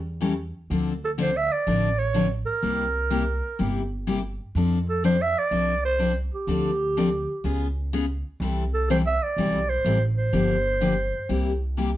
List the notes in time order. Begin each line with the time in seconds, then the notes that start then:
Already playing: E2
0.21 E3 G3 C#4 E4 A4
0.70 D2 D3 F3 C4 D4 A4
1.05 A4
1.18 D3 F3 C4 D4 A4 C5
1.37 E5
1.52 D5
1.67 A1 D3 F3 C4 D4 A4
1.98 C#5
2.14 D3 F3 C4 D4 A4
2.46 A#4
2.62 C2 C3 G3 A#3 E4 G4
3.10 C3 G3 A#3 E4 G4
3.59 G1 C3 G3 A#3 E4 G4
4.07 C3 G3 A#3 E4 G4
4.55 F2 F3 C4 D4 A4
4.89 A4
5.04 F3 C4 D4 A4 C5
5.22 E5
5.38 D5
5.51 C2 F3 C4 D4 A4
5.85 C5
5.99 F3 C4 D4 A4
6.34 G4
6.47 D2 D3 F3 C4 D4 A4
6.97 D3 F3 C4 D4 A4
7.44 C#2 C#3 G#3 B3 F4 G#4
7.93 C#3 G#3 B3 F4 G#4
8.40 C2 C3 E3 G3 C4 E4 A4
8.74 A4
8.90 C3 E3 G3 C4 E4 A4 C5
9.07 E5
9.23 D5
9.37 B1 C3 E3 G3 C4 E4 A4
9.69 C5
9.85 A1 C3 E3 G3 C4 E4 A4
10.17 C5
10.33 G1 D3 F3 A#3 D4 G4
10.81 D3 F3 A#3 D4 G4
11.29 C2 C3 G3 A#3 E4 G4
11.77 C3 G3 A#3 E4 G4